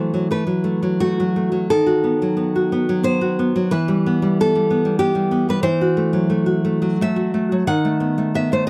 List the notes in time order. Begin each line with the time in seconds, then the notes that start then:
Already playing: E3 F#3 A3 C5
0.14 F#3
0.31 A3 B4
0.47 F#3
0.64 A3
0.82 F#3
1.00 A3 F#4
1.20 F#3
1.36 A3
1.52 F#3
1.70 D#3 A4
1.86 F#4
2.04 B3
2.22 F#3
2.37 B3
2.56 F#4
2.72 B3
2.89 F#3
3.03 B3 C5
3.21 F#4
3.39 B3
3.56 F#3
3.71 E3 B4
3.88 G3
4.06 B3
4.22 G3
4.40 B3 A4
4.55 G3
4.70 B3
4.85 G3
4.99 B3 G4
5.15 G3
5.31 B3
5.49 G3 B4
5.63 E3 C5
5.81 F#4
5.97 A3
6.13 F#3
6.30 A3
6.46 F#4
6.65 A3
6.82 F#3
7.01 A3 E5
7.16 F#4
7.34 A3
7.52 F#3
7.67 D#3 F#5
7.85 A3
8.00 B3
8.18 A3
8.35 B3 E5
8.52 A3 C5
8.67 B3